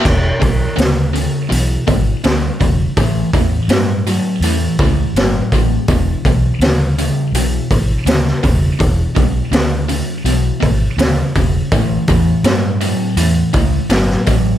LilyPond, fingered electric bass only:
\new Staff \with { instrumentName = "Fingered electric bass" } { \clef bass \time 4/4 \key a \major \tempo 4 = 82 e,,8 b,,8 d,4 b,,8 gis,,8 d,8 e,,8 | a,,8 e,8 g,4 e,8 cis,8 g,,8 a,,8 | e,,8 b,,8 d,4 b,,8 gis,,8 d,8 e,,8 | e,,8 b,,8 d,4 b,,8 gis,,8 d,8 e,,8 |
a,,8 e,8 g,4 e,8 cis,8 g,,8 a,,8 | }